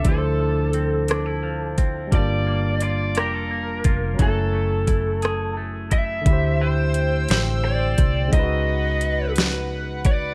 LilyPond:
<<
  \new Staff \with { instrumentName = "Analog synth pad" } { \time 6/8 \key d \lydian \tempo 4. = 58 r2. | r2. | r2. | <c'' g'' e'''>2. |
<b' fis''>2. | }
  \new Staff \with { instrumentName = "Lead electric guitar" } { \time 6/8 \key d \lydian a'2~ a'8 r8 | d''4 d''8 bes'4. | a'2 r8 e''8~ | e''8 c''4 c''8 d''4 |
dis''4. r4 d''8 | }
  \new Staff \with { instrumentName = "Tine electric piano" } { \time 6/8 \key d \lydian <d f d' e' b' c''>2. | <g bes d' f' a''>2. | <fis a cis' e' gis''>2. | <d a e' g' c''>2. |
<cis gis dis' eis' fis' b'>2. | }
  \new Staff \with { instrumentName = "Clean electric guitar" } { \time 6/8 \key d \lydian d8 f8 c'8 d'16 e'16 f8 c'8 | g8 bes8 f'8 g'16 a'16 bes8 f'8 | fis8 a8 e'8 gis'8 a8 e'8 | r2. |
r2. | }
  \new Staff \with { instrumentName = "Fingered electric bass" } { \clef bass \time 6/8 \key d \lydian d,2. | g,,4. f,,4 f,,8 | fis,,2. | d,4. a,,4 c,8 |
cis,2. | }
  \new DrumStaff \with { instrumentName = "Drums" } \drummode { \time 6/8 <hh bd>4 hh8 <hh ss>4 <hh bd>8 | <hh bd>4 hh8 <hh ss>4 <hh bd>8 | <hh bd>4 <hh bd>8 <hh ss>4 <hh bd>8 | <hh bd>4 hh8 <hh sn>4 <hh bd>8 |
<hh bd>4 hh8 <hh sn>4 <hh bd>8 | }
>>